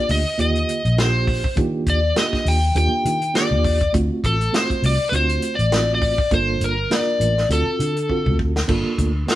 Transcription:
Already playing: reed electric piano A#3 D4 F4 G4, electric slide guitar D5
0.09 fingered electric bass D2, electric slide guitar D#5, open hi-hat
0.38 fingered electric bass D#2, reed electric piano D3 A#3 F4 G4, electric slide guitar D#5, closed hi-hat
0.55 closed hi-hat
0.69 closed hi-hat
0.85 fingered electric bass A#1, closed hi-hat
0.97 reed electric piano A#3 D4 F4 G4, electric slide guitar C5, snare, closed hi-hat
1.27 kick, open hi-hat
1.44 kick
1.56 fingered electric bass D#3, reed electric piano A#3 D4 F4 G4, kick, closed hi-hat
1.87 fingered electric bass D#2, electric slide guitar D5, kick, closed hi-hat
2.16 reed electric piano A#3 D4 F4 G4, electric slide guitar D#5, snare, closed hi-hat
2.33 kick, snare
2.45 fingered electric bass D#2, electric slide guitar G5, open hi-hat
2.75 fingered electric bass D#2, reed electric piano A#3 D4 F4 G4, electric slide guitar G5, closed hi-hat
3.05 fingered electric bass D#3, closed hi-hat
3.22 closed hi-hat
3.34 reed electric piano A#3 D4 F4 G4, electric slide guitar D5, snare, closed hi-hat
3.51 fingered electric bass D#2
3.64 kick, open hi-hat
3.81 kick, closed hi-hat
3.93 fingered electric bass D2, reed electric piano A3 C4 F4 F#4, kick, closed hi-hat
4.24 fingered electric bass A1, electric slide guitar A4, kick, closed hi-hat
4.41 closed hi-hat
4.53 reed electric piano A3 C4 F4 F#4, electric slide guitar C5, snare, closed hi-hat
4.70 kick, closed hi-hat
4.83 fingered electric bass C2, electric slide guitar D5, open hi-hat
5.09 fingered electric bass D2, reed electric piano A3 C4 F4 F#4, electric slide guitar B4, closed hi-hat
5.16 electric slide guitar C5
5.29 closed hi-hat
5.42 closed hi-hat
5.55 fingered electric bass A1, electric slide guitar D5, closed hi-hat
5.71 reed electric piano A3 C4 F4 F#4, snare, closed hi-hat
5.95 electric slide guitar D5
6.02 kick, open hi-hat
6.18 kick
6.31 fingered electric bass G1, reed electric piano A#3 D4 F4 A4, electric slide guitar C5, kick, closed hi-hat
6.60 fingered electric bass G1, electric slide guitar A#4, closed hi-hat
6.90 reed electric piano A#3 D4 F4 A#4, electric slide guitar D5, snare, closed hi-hat
7.20 fingered electric bass A1, closed hi-hat
7.38 snare
7.49 fingered electric bass D2, reed electric piano C4 F4 F#4 A4, electric slide guitar A4, closed hi-hat
7.79 fingered electric bass D3, closed hi-hat
7.97 closed hi-hat
8.09 reed electric piano C4 F4 F#4 A4, kick
8.26 fingered electric bass D2, kick
8.39 kick
8.56 snare
8.68 fingered electric bass G1, reed electric piano A#3 D4 F4 A4, kick, crash
8.98 fingered electric bass D2, kick, closed hi-hat
9.27 reed electric piano A#3 D4 F4 A4, snare, closed hi-hat
9.32 electric slide guitar G4

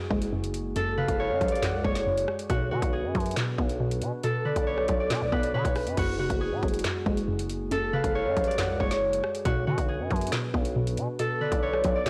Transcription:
Already playing: synth pluck F#2 C#3 F#3, glass harmonica G#3 F#4 G#4, harp F#4 G#4 B4
0.10 808-style bass F#1, synth pluck G#3, kick
0.22 closed hi-hat
0.33 synth pluck F#2
0.44 closed hi-hat
0.54 closed hi-hat
0.76 synth pluck F#2, harp A4, closed hi-hat
0.97 synth pluck C#3, harp B4, soft synth lead F5
1.08 808-style bass F#1, kick, closed hi-hat
1.20 harp C#5
1.30 808-style bass F#2
1.41 808-style bass A1, synth pluck F#3, kick, closed hi-hat
1.48 harp D5, closed hi-hat
1.56 closed hi-hat
1.62 synth pluck F#2, soft synth lead F#5, snare, clap, closed hi-hat
1.74 808-style bass C#2
1.84 808-style bass F#1, synth pluck G#3, soft synth lead C#5, harp C#5, kick
1.95 snare, closed hi-hat
2.06 synth pluck F#2
2.18 closed hi-hat
2.28 cross-stick
2.39 closed hi-hat
2.49 808-style bass B1, synth pluck B2, glass harmonica B3 D4 B4, harp F#4, kick, closed hi-hat
2.71 808-style bass B2, synth pluck D3, harp F#4
2.82 808-style bass B1, kick, closed hi-hat
2.93 harp G#4
3.04 808-style bass F#2
3.15 808-style bass F#2, synth pluck F#3, kick, closed hi-hat
3.20 closed hi-hat
3.26 closed hi-hat
3.31 closed hi-hat
3.37 synth pluck B2, snare, clap, closed hi-hat
3.58 808-style bass B1, synth pluck B3, kick
3.69 closed hi-hat
3.80 synth pluck B2
3.91 closed hi-hat
4.02 808-style bass B2, closed hi-hat
4.23 synth pluck B2, harp A4, closed hi-hat
4.45 synth pluck D3, harp B4, soft synth lead D5
4.56 808-style bass B1, kick, closed hi-hat
4.67 harp C#5
4.78 cross-stick
4.88 808-style bass B1, synth pluck F#3, kick, closed hi-hat
5.00 harp D5
5.10 synth pluck B2, 808-style bass B2, snare, clap, closed hi-hat
5.21 808-style bass B1
5.32 808-style bass B1, synth pluck B3, harp B4, kick
5.43 closed hi-hat
5.54 synth pluck B2, 808-style bass D3, harp B4, soft synth lead C#5
5.65 808-style bass B1, kick, closed hi-hat
5.76 soft synth lead B4, cross-stick, open hi-hat
5.87 808-style bass F#2, closed hi-hat
5.97 808-style bass F#1, synth pluck F#2, glass harmonica G#3 F#4 G#4, harp F#4, kick, closed hi-hat, crash
6.19 808-style bass F1, synth pluck C#3, harp F#4
6.30 808-style bass F#1, kick, closed hi-hat
6.41 harp G#4
6.52 808-style bass A2
6.63 808-style bass F#1, synth pluck F#3, kick, closed hi-hat
6.68 closed hi-hat
6.74 closed hi-hat
6.79 closed hi-hat
6.84 synth pluck F#2, snare, clap, closed hi-hat
7.06 808-style bass F#1, synth pluck G#3, kick
7.17 closed hi-hat
7.28 synth pluck F#2
7.39 closed hi-hat
7.50 closed hi-hat
7.71 synth pluck F#2, harp A4, closed hi-hat
7.93 synth pluck C#3, harp B4, soft synth lead F5
8.04 808-style bass F#1, kick, closed hi-hat
8.15 harp C#5
8.26 808-style bass F#2
8.37 808-style bass A1, synth pluck F#3, kick, closed hi-hat
8.44 harp D5, closed hi-hat
8.51 closed hi-hat
8.58 synth pluck F#2, soft synth lead F#5, snare, clap, closed hi-hat
8.69 808-style bass C#2
8.80 808-style bass F#1, synth pluck G#3, soft synth lead C#5, harp C#5, kick
8.91 snare, closed hi-hat
9.02 synth pluck F#2
9.13 closed hi-hat
9.24 cross-stick
9.35 closed hi-hat
9.45 808-style bass B1, synth pluck B2, glass harmonica B3 D4 F#4 B4, harp F#4, kick, closed hi-hat
9.67 808-style bass B2, synth pluck D3, harp F#4
9.78 808-style bass B1, kick, closed hi-hat
9.88 harp G#4
10.00 808-style bass F#2
10.11 808-style bass F#2, synth pluck F#3, kick, closed hi-hat
10.16 closed hi-hat
10.21 closed hi-hat
10.27 closed hi-hat
10.32 synth pluck B2, snare, clap, closed hi-hat
10.54 808-style bass B1, synth pluck B3, kick
10.65 closed hi-hat
10.76 synth pluck B2
10.87 closed hi-hat
10.97 808-style bass B2, closed hi-hat
11.19 synth pluck B2, harp A4, closed hi-hat
11.41 synth pluck D3, harp B4, soft synth lead D5
11.52 808-style bass B1, kick, closed hi-hat
11.63 harp C#5
11.74 cross-stick
11.84 808-style bass B1, synth pluck F#3, kick, closed hi-hat
11.95 harp D5
12.06 synth pluck B2, 808-style bass B2, snare, closed hi-hat

